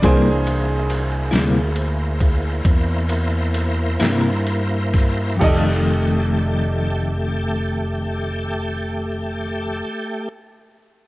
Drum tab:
CC |------------|x-----------|
RD |xxxxxxxxxxxx|------------|
SD |---o-----o-o|------------|
BD |o----oo----o|o-----------|